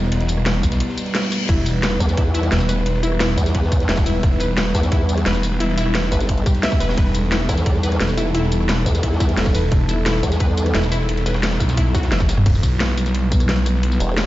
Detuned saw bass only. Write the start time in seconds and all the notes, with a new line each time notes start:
Already playing: E1
0.12 E1
0.63 B1
1.49 E1
2.52 E1
2.86 E1
4.06 E1
4.23 E1
5.26 E1
5.60 E1
6.80 E1
6.97 E1
8.00 E1
8.35 E1
9.55 E1
9.72 E1
10.75 E1
11.09 E1
11.60 B1
12.12 F#1
12.46 E1
12.63 B1